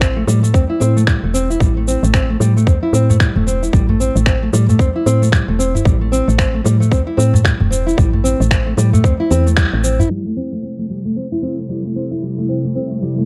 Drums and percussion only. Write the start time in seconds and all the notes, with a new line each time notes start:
0.01 finger snap, kick, shaker
0.28 shaker
0.44 shaker
0.54 kick, shaker
0.81 shaker
0.97 shaker
1.07 finger snap, kick, shaker
1.35 shaker
1.51 shaker
1.60 kick, shaker
1.88 shaker
2.04 shaker
2.14 finger snap, kick, shaker
2.41 shaker
2.57 shaker
2.67 kick, shaker
2.94 shaker
3.10 udu, shaker
3.20 finger snap, kick, shaker
3.36 udu
3.48 shaker
3.63 shaker
3.73 kick, shaker
3.89 udu
4.00 shaker
4.16 shaker
4.26 finger snap, kick, shaker
4.53 shaker
4.69 udu, shaker
4.79 kick, shaker
5.07 shaker
5.23 shaker
5.32 finger snap, kick, shaker
5.60 shaker
5.75 udu, shaker
5.85 kick, shaker
6.13 shaker
6.29 shaker
6.39 finger snap, kick, shaker
6.66 shaker
6.82 shaker
6.92 kick, shaker
7.19 shaker
7.34 udu, shaker
7.45 finger snap, kick, shaker
7.60 udu
7.72 shaker
7.88 shaker
7.98 kick, shaker
8.14 udu
8.25 shaker
8.41 shaker
8.51 finger snap, kick, shaker
8.78 shaker
8.93 udu, shaker
9.04 kick, shaker
9.31 shaker
9.47 shaker
9.57 finger snap, kick, shaker
9.84 shaker
9.99 udu, shaker
10.91 shaker
11.07 shaker
11.44 shaker
11.60 shaker
11.97 shaker
12.24 shaker
12.50 shaker
12.66 shaker
13.03 shaker
13.19 shaker